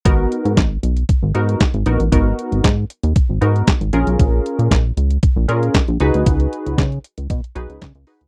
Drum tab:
HH |x-xxx-xxx-xxxxxx|x-xxx-xxx-xxxxxx|x-xxx-xxx-xxxxxx|xxxxxxxxxxxxxxox|
CP |----x-------x---|----x-------x---|----x-------x---|----x-------x---|
SD |----o-------o---|----o-------o---|----o-------o---|----o-------o---|
BD |o---o---o---o---|o---o---o---o---|o---o---o---o---|o---o---o---o---|